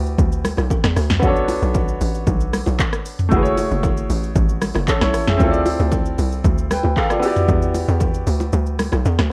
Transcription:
0.00 0.17 D2 loud
0.00 0.91 B3 medium
0.00 0.92 E4 medium
0.00 0.93 F#4 medium
0.00 0.94 G4 medium
0.00 0.95 D5 medium
0.06 shaker medium
0.18 0.55 D2 medium
0.18 kick loud
0.18 low conga medium
0.18 shaker medium
0.32 shaker medium
0.45 cross-stick loud
0.45 open hi-hat medium
0.45 low conga medium
0.45 shaker medium
0.57 0.70 B1 medium
0.57 cross-stick medium
0.57 low bongo medium
0.57 shaker medium
0.71 kick loud
0.71 high bongo medium
0.71 shaker medium
0.84 0.96 E2 medium
0.84 cross-stick loud
0.84 snare medium
0.84 shaker medium
0.97 1.24 D2 loud
0.97 cross-stick medium
0.97 open hi-hat medium
0.97 high bongo medium
0.97 shaker medium
1.10 snare medium
1.10 mid tom medium
1.10 shaker medium
1.20 1.59 B1 loud
1.20 3.26 B3 medium
1.20 1.29 C#4 medium
1.20 3.28 F#4 medium
1.20 kick loud
1.20 low conga medium
1.20 shaker medium
1.26 3.30 D4 medium
1.26 3.29 A4 medium
1.26 3.30 C#5 medium
1.36 shaker medium
1.49 open hi-hat medium
1.49 low bongo medium
1.49 shaker loud
1.62 1.98 B1 loud
1.62 shaker soft
1.75 kick loud
1.75 high bongo medium
1.75 shaker medium
1.88 shaker medium
2.01 2.25 A1 medium
2.01 open hi-hat medium
2.01 shaker medium
2.15 shaker medium
2.27 2.64 B1 loud
2.27 kick loud
2.27 low conga medium
2.27 shaker medium
2.40 shaker medium
2.53 cross-stick loud
2.53 open hi-hat medium
2.53 low conga medium
2.53 shaker medium
2.66 2.78 B1 medium
2.66 low bongo medium
2.66 shaker medium
2.79 kick medium
2.79 clap medium
2.79 high bongo medium
2.79 shaker medium
2.93 cross-stick loud
2.93 shaker medium
3.05 open hi-hat medium
3.05 shaker medium
3.19 mid tom medium
3.19 shaker medium
3.29 3.68 F#1 loud
3.29 5.35 A3 medium
3.29 4.59 E4 medium
3.29 4.60 F#4 medium
3.29 kick loud
3.29 low conga medium
3.29 shaker medium
3.34 4.61 G#4 medium
3.34 3.40 B4 medium
3.43 4.65 C#5 medium
3.43 shaker medium
3.57 open hi-hat medium
3.57 low bongo medium
3.57 shaker medium
3.71 4.07 F#1 loud
3.71 shaker soft
3.83 kick loud
3.83 high bongo medium
3.83 shaker medium
3.97 shaker medium
4.10 4.34 A1 medium
4.10 open hi-hat medium
4.10 shaker medium
4.23 shaker medium
4.36 4.72 A1 loud
4.36 kick loud
4.36 low conga medium
4.36 shaker medium
4.49 shaker medium
4.62 cross-stick loud
4.62 open hi-hat medium
4.62 low conga medium
4.62 shaker medium
4.75 4.87 F#1 medium
4.75 cross-stick medium
4.75 low bongo medium
4.75 shaker medium
4.88 5.02 C#4 medium
4.88 5.01 A4 medium
4.88 kick medium
4.88 clap medium
4.88 high bongo medium
4.88 shaker medium
5.01 5.16 B1 medium
5.01 5.27 E4 medium
5.01 5.27 C#5 medium
5.01 cross-stick loud
5.01 snare medium
5.01 shaker medium
5.14 5.38 A1 loud
5.14 cross-stick medium
5.14 open hi-hat medium
5.14 shaker medium
5.27 5.53 G#4 medium
5.27 5.53 E5 medium
5.27 snare medium
5.27 mid tom loud
5.27 shaker medium
5.37 5.77 D2 loud
5.37 7.18 C4 medium
5.37 6.68 E4 medium
5.37 6.69 F4 medium
5.37 kick loud
5.37 low conga medium
5.37 shaker medium
5.43 6.70 A4 medium
5.43 5.49 C#5 medium
5.51 6.74 D5 medium
5.51 shaker medium
5.66 open hi-hat medium
5.66 low bongo medium
5.66 shaker medium
5.80 6.16 D2 loud
5.80 shaker soft
5.92 kick loud
5.92 high bongo medium
5.92 shaker medium
6.06 shaker medium
6.19 6.43 C2 medium
6.19 open hi-hat medium
6.19 shaker medium
6.32 shaker medium
6.44 6.81 D2 loud
6.44 kick loud
6.44 low conga medium
6.44 shaker medium
6.58 shaker medium
6.71 6.96 B4 medium
6.71 6.96 G5 medium
6.71 cross-stick loud
6.71 open hi-hat soft
6.71 low conga medium
6.71 shaker medium
6.83 6.96 D2 medium
6.83 low bongo medium
6.83 shaker medium
6.97 7.10 A4 medium
6.97 7.10 F5 medium
6.97 kick medium
6.97 clap medium
6.97 high bongo medium
6.97 shaker medium
7.10 7.36 F4 medium
7.10 7.26 D5 medium
7.10 cross-stick loud
7.10 shaker medium
7.20 9.26 B3 medium
7.20 9.27 E4 medium
7.20 9.28 F#4 medium
7.20 open hi-hat medium
7.20 shaker medium
7.26 9.29 G4 medium
7.26 9.30 D5 medium
7.36 mid tom medium
7.36 shaker medium
7.48 7.85 E2 loud
7.48 kick loud
7.48 low conga medium
7.48 shaker medium
7.62 shaker medium
7.75 open hi-hat medium
7.75 low bongo medium
7.75 shaker medium
7.89 8.24 E2 loud
7.89 shaker soft
8.01 kick loud
8.01 high bongo medium
8.01 shaker medium
8.15 shaker medium
8.27 8.51 D2 medium
8.27 open hi-hat medium
8.27 shaker medium
8.40 low bongo medium
8.40 shaker medium
8.53 8.90 D2 loud
8.53 low conga medium
8.53 shaker medium
8.66 shaker medium
8.79 cross-stick loud
8.79 open hi-hat medium
8.79 low conga medium
8.79 shaker medium
8.92 9.05 B1 medium
8.92 cross-stick medium
8.92 low bongo medium
8.92 shaker medium
9.05 9.18 E2 medium
9.05 high bongo medium
9.05 shaker medium
9.19 9.31 D2 medium
9.19 cross-stick loud
9.19 snare medium
9.19 shaker medium

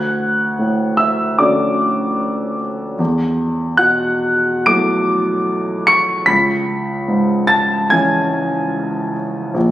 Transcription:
0.00 2.95 D2 soft
0.00 0.95 F#5 medium
0.00 0.98 F#6 medium
0.59 1.87 A2 soft
0.97 1.36 E5 medium
0.97 1.38 E6 medium
1.39 2.95 D3 soft
1.39 2.95 A3 soft
1.39 2.96 C#4 soft
1.39 2.96 F#4 soft
1.39 2.55 D5 medium
1.39 2.59 D6 medium
2.99 6.23 E2 soft
3.77 5.18 B2 soft
3.77 4.63 F#5 medium
3.77 4.67 F#6 medium
4.66 6.23 F#3 soft
4.66 6.24 A3 soft
4.66 6.24 B3 soft
4.66 6.24 E4 soft
4.66 5.84 D6 medium
4.66 5.88 D7 medium
5.87 6.25 C#6 medium
5.87 6.27 C#7 loud
6.26 9.51 C#2 medium
6.26 7.45 B5 medium
6.26 7.48 B6 medium
7.08 8.40 G#2 soft
7.47 7.87 A5 medium
7.47 7.90 A6 medium
7.90 9.52 E3 soft
7.90 9.52 G#3 soft
7.90 9.52 C#4 soft
7.90 9.52 E4 soft
7.90 9.11 G#5 medium
7.90 9.14 G#6 medium
9.54 9.71 A#1 medium

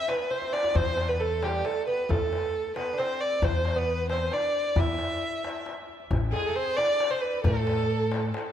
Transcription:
0.00 0.10 E5 loud
0.08 0.30 B3 medium
0.08 0.32 B4 medium
0.08 tombak tek medium
0.31 0.54 C4 medium
0.31 0.54 C5 medium
0.31 tombak tek soft
0.42 tombak ka medium
0.52 0.73 D4 medium
0.52 0.78 D5 medium
0.52 tombak tek medium
0.64 tombak ka medium
0.74 1.61 E2 medium
0.74 1.09 C4 medium
0.74 1.10 C5 medium
0.74 tombak dum medium
0.97 tombak tek medium
1.08 1.20 B3 medium
1.08 1.21 B4 medium
1.20 1.43 A3 medium
1.20 1.45 A4 medium
1.31 tombak ka soft
1.42 1.65 G3 medium
1.42 1.67 G4 medium
1.42 tombak tek medium
1.65 1.87 A3 medium
1.65 1.87 A4 medium
1.65 tombak tek medium
1.87 2.09 B3 medium
1.87 2.12 B4 medium
1.99 tombak ka soft
2.09 2.30 E2 medium
2.09 2.76 A3 medium
2.09 2.76 A4 medium
2.09 tombak dum medium
2.33 tombak tek medium
2.66 tombak ka soft
2.76 2.92 B3 medium
2.76 3.00 B4 medium
2.76 tombak tek medium
2.93 2.99 D4 medium
2.98 3.42 C4 medium
2.98 3.22 C5 medium
2.98 tombak tek medium
3.21 3.45 D5 medium
3.32 tombak ka soft
3.42 4.28 E2 medium
3.42 3.74 C4 medium
3.42 3.79 C5 medium
3.42 tombak dum loud
3.65 tombak tek medium
3.76 4.10 B3 medium
3.76 4.10 B4 medium
3.99 tombak ka soft
4.10 4.33 C4 medium
4.10 4.35 C5 medium
4.10 tombak tek medium
4.32 4.77 D4 medium
4.32 4.81 D5 medium
4.32 tombak tek medium
4.65 tombak ka soft
4.76 4.97 E2 medium
4.76 5.62 E4 medium
4.76 5.67 E5 medium
4.76 tombak dum loud
4.98 tombak tek medium
5.21 tombak ka soft
5.33 tombak ka soft
5.44 tombak tek medium
5.66 tombak tek medium
5.88 tombak ka soft
6.00 tombak ka soft
6.11 6.31 A1 medium
6.11 tombak dum medium
6.32 6.50 G#3 medium
6.32 6.74 G#4 medium
6.32 6.47 G#4 medium
6.32 6.35 A4 medium
6.32 tombak tek medium
6.45 6.55 A3 medium
6.45 6.53 G#4 medium
6.45 6.49 A4 medium
6.51 6.57 A4 medium
6.55 6.78 C4 medium
6.55 6.78 C5 medium
6.67 tombak ka soft
6.76 7.12 D4 medium
6.76 7.10 D5 medium
6.76 7.12 D5 loud
6.76 tombak tek medium
7.00 tombak tek medium
7.09 7.44 C4 medium
7.09 7.21 C5 medium
7.09 7.22 C5 medium
7.21 7.44 B4 medium
7.21 7.43 B4 medium
7.21 tombak ka soft
7.34 tombak ka soft
7.42 8.30 A2 loud
7.42 8.52 A3 medium
7.42 8.50 A4 medium
7.42 8.52 A4 medium
7.42 tombak dum medium
7.67 tombak tek medium
8.01 tombak ka soft
8.12 tombak tek medium
8.34 tombak tek medium

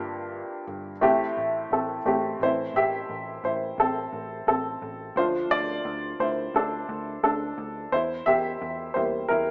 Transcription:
0.00 0.41 G1 medium
0.00 0.64 G2 medium
0.00 0.91 A#3 medium
0.00 0.91 D4 medium
0.00 0.91 F4 medium
0.00 0.92 G4 medium
0.68 1.02 G1 medium
1.01 1.31 A1 medium
1.01 2.02 A2 medium
1.01 1.97 A3 medium
1.01 1.71 C4 medium
1.01 1.98 E4 medium
1.01 1.98 G4 medium
1.37 1.65 A1 medium
1.71 1.99 A1 medium
1.71 2.05 C4 medium
1.71 2.43 A4 medium
2.06 2.34 A1 medium
2.06 2.38 A3 medium
2.06 2.38 C4 medium
2.06 2.38 E4 medium
2.06 2.38 G4 medium
2.40 2.68 A1 medium
2.40 3.41 E3 medium
2.40 3.41 A3 soft
2.40 3.41 C4 medium
2.40 2.74 E4 medium
2.40 2.77 C5 medium
2.74 3.03 A1 medium
2.74 3.41 G4 medium
2.74 3.41 E5 medium
3.09 3.38 A1 medium
3.44 3.72 A1 medium
3.44 3.77 E4 medium
3.44 3.80 C5 medium
3.78 4.07 A1 medium
3.78 4.45 C4 medium
3.78 4.47 A4 medium
4.13 4.41 A1 medium
4.47 4.76 A1 medium
4.47 5.13 C4 medium
4.47 5.19 A4 medium
4.82 5.10 A1 medium
5.16 5.44 D2 medium
5.16 5.63 F3 medium
5.16 5.63 A3 soft
5.16 5.63 D4 medium
5.16 5.50 F4 medium
5.16 5.52 C5 medium
5.51 5.79 D2 medium
5.51 6.17 F4 medium
5.51 6.22 D5 loud
5.85 6.14 D2 loud
6.20 6.48 D2 medium
6.20 6.29 E4 medium
6.20 6.28 C5 medium
6.54 6.83 D2 medium
6.54 7.21 D4 medium
6.54 7.22 A4 medium
6.89 7.17 D2 medium
7.23 7.52 D2 medium
7.23 7.89 D4 medium
7.23 7.89 A4 medium
7.58 7.86 D2 medium
7.92 8.21 E2 loud
7.92 8.25 E4 medium
7.92 8.25 C5 medium
8.26 8.55 E2 medium
8.26 8.92 G4 medium
8.26 8.98 E5 medium
8.62 8.90 E2 medium
8.94 9.24 E2 loud
8.94 9.41 G3 medium
8.94 9.42 A#3 soft
8.94 9.28 E4 medium
8.94 9.31 C5 medium
9.29 9.51 E2 medium
9.29 9.51 E4 medium
9.29 9.51 A#4 medium

